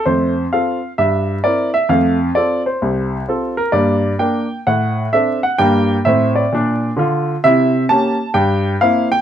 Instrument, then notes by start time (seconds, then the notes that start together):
grand piano
0.06 F2 A3 C5
0.53 C4 F4 A4 F5
0.98 G2 E5
1.43 C4 E4 A#4 D5
1.74 E5
1.89 F2 A3 F5
2.35 C4 F4 A4 D5
2.66 C5
2.82 C2
3.28 C4 F4 A4
3.57 A#4
3.72 G2 A#3 D5
4.19 A#3 D4 A#4 G5
4.67 A2 F#5
5.13 C4 D4 A4 E5
5.43 F#5
5.58 G2 A#3 G5
6.05 A2 C4 E5
6.36 D5
6.52 A#2 D4
6.97 D3 F4
7.44 C3 E4 E5
7.89 A#3 C#4 G4 A5
8.34 G2 G5
8.81 A#3 C4 E4 F5
9.12 G5